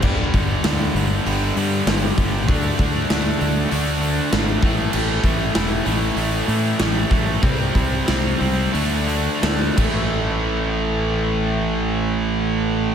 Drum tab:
CC |x-------|--------|x-------|-------x|
HH |-ooooooo|oooooooo|-ooooooo|ooooooo-|
SD |--o---o-|--o---o-|--o---o-|--o---o-|
BD |oo-----o|oo-----o|-o-----o|oo-----o|

CC |--------|
HH |--------|
SD |--------|
BD |--------|